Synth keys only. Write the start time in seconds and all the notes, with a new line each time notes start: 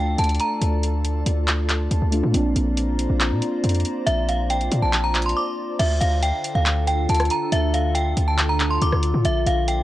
Already playing: A3 D4 F4
2.12 A3 D4 F4
2.32 A#3 C4
2.37 D4